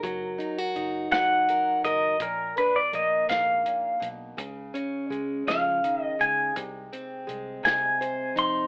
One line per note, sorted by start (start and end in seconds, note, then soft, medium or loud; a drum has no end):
0.00 0.36 F#1 loud
0.00 1.10 F#3 medium
0.00 1.49 A#4 medium
0.00 kick medium
0.04 closed hi-hat medium
0.38 0.58 D#4 medium
0.38 closed hi-hat soft
0.58 2.20 F#4 medium
0.76 1.08 F#1 medium
0.76 2.16 D#4 medium
0.76 closed hi-hat soft
1.11 1.76 F#1 medium
1.11 2.20 F#3 medium
1.11 1.84 F#5 loud
1.11 kick medium
1.11 snare medium
1.11 closed hi-hat medium
1.48 1.84 A#4 medium
1.48 closed hi-hat soft
1.84 2.16 F#1 medium
1.84 2.16 A#4 medium
1.84 2.21 D#5 medium
1.84 closed hi-hat medium
2.20 2.52 A#1 medium
2.20 3.28 A#2 medium
2.20 2.55 A#4 medium
2.20 kick medium
2.20 closed hi-hat medium
2.57 4.34 D4 medium
2.57 2.76 B4 medium
2.57 closed hi-hat soft
2.76 2.94 D5 medium
2.93 3.25 A#1 medium
2.93 4.34 A#3 medium
2.93 3.29 D#5 medium
2.93 closed hi-hat soft
3.29 3.94 A#1 medium
3.29 3.65 G#2 medium
3.29 4.07 F5 medium
3.29 kick medium
3.29 snare medium
3.29 closed hi-hat medium
3.66 4.00 A#2 medium
3.66 closed hi-hat medium
4.00 4.34 B1 medium
4.00 4.37 B2 medium
4.00 closed hi-hat soft
4.37 4.71 C#2 loud
4.37 5.47 C#3 medium
4.37 kick medium
4.37 closed hi-hat medium
4.74 6.52 C#4 medium
4.74 closed hi-hat soft
5.10 5.43 C#2 medium
5.10 7.27 G#3 medium
5.10 closed hi-hat soft
5.47 6.12 C#2 medium
5.47 5.84 F3 medium
5.47 6.03 F5 medium
5.47 kick medium
5.47 snare medium
5.47 closed hi-hat medium
5.84 6.19 D#3 medium
5.84 closed hi-hat medium
6.03 6.23 D#5 medium
6.19 6.53 C#2 medium
6.19 6.56 C#3 medium
6.19 6.54 G#5 medium
6.19 closed hi-hat soft
6.56 6.88 C2 loud
6.56 7.62 C3 medium
6.56 kick medium
6.56 closed hi-hat medium
6.93 8.67 C4 medium
6.93 closed hi-hat soft
7.27 7.61 C2 medium
7.27 8.67 G#3 medium
7.27 closed hi-hat soft
7.63 8.29 C2 medium
7.63 8.67 C3 medium
7.63 8.39 G#5 medium
7.63 kick medium
7.63 snare medium
7.63 closed hi-hat medium
8.01 8.67 C5 medium
8.01 closed hi-hat medium
8.35 8.67 F2 medium
8.35 8.67 D#4 medium
8.35 8.67 C6 medium
8.35 closed hi-hat soft